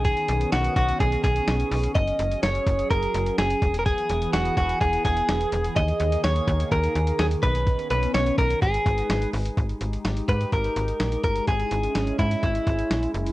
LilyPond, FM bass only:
\new Staff \with { instrumentName = "FM bass" } { \clef bass \time 4/4 \key dis \phrygian \tempo 4 = 126 b,,8 b,,8 b,,8 b,,8 b,,8 b,,8 b,,8 b,,8 | fis,,8 fis,,8 fis,,8 fis,,8 fis,,8 fis,,8 fis,,8 e,,8~ | e,,8 e,,8 e,,8 e,,8 e,,8 e,,8 e,,8 e,,8 | dis,8 dis,8 dis,8 dis,8 dis,8 dis,8 dis,8 b,,8~ |
b,,8 b,,8 b,,8 b,,8 gis,,8 gis,,8 gis,,8 gis,,8 | gis,,8 gis,,8 gis,,8 gis,8 gis,,8 gis,,8 ais,,8 g,,8 | gis,,8 gis,,8 gis,,8 gis,8 gis,,8 gis,,8 ais,,8 fis,,8 | }